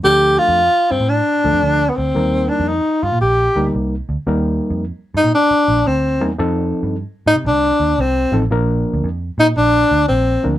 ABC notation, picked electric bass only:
X:1
M:4/4
L:1/16
Q:"Swing" 1/4=113
K:Eblyd
V:1 name="Picked electric bass" clef=bass
D,,3 F,,2 z G,, A,,2 z D,, F,, D,,2 D,,2 | E,,3 F,,2 z G,, B,, B,,,2 D,,2 C,,2 D,, z | E,,3 F,,2 z G,, B,, z2 B,,,2 D,,2 =E,,2 | F,,3 G,,2 z A,, C, C,,2 E,,2 C,,2 A,,,2 |
B,,,3 D,, F,,2 B,,2 B,,,2 D,,2 B,,,2 D,,2 |]